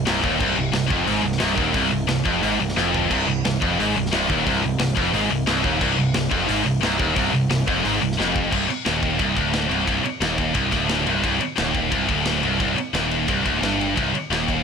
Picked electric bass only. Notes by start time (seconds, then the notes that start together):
0.08 C1
0.24 D#1
0.41 C1
0.56 C1
0.72 C1
0.90 F1
1.06 G#1
1.23 C1
1.41 C1
1.58 D#1
1.75 C1
1.92 C1
2.09 C1
2.25 F1
2.43 G#1
2.60 C1
2.77 F1
3.11 C1
3.28 C1
3.46 C1
3.62 F1
3.80 G#1
3.98 C1
4.13 C1
4.30 D#1
4.47 C1
4.64 C1
4.80 C1
4.97 F1
5.13 G#1
5.30 C1
5.47 C1
5.64 D#1
5.81 C1
5.99 C1
6.16 C1
6.31 F1
6.50 G#1
6.66 C1
6.82 C1
6.99 D#1
7.16 C1
7.34 C1
7.51 C1
7.68 F1
7.85 G#1
8.02 C1
8.19 F1
8.52 C1
8.70 muted picked electric bass stroke
8.87 D#1
9.20 C1
9.37 D1
9.70 C1
9.88 C1
10.03 muted picked electric bass stroke
10.21 D#1
10.55 C1
10.72 D1
11.07 C1
11.24 C1
11.42 muted picked electric bass stroke
11.59 D#1
11.92 C1
12.09 D1
12.43 C1
12.60 C1
12.78 muted picked electric bass stroke
12.94 D#1
13.28 C1
13.46 D1
13.62 G1
13.98 C1
14.15 muted picked electric bass stroke
14.30 D#1